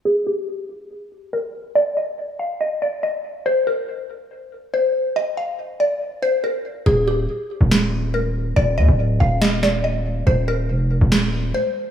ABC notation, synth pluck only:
X:1
M:4/4
L:1/8
Q:1/4=141
K:Eb
V:1 name="Synth pluck"
A G4- G B2 | d e z f e d e2 | c B4- B c2 | e f z d2 c B2 |
A G4- G B2 | d e z f e d e2 | c B4- B c2 |]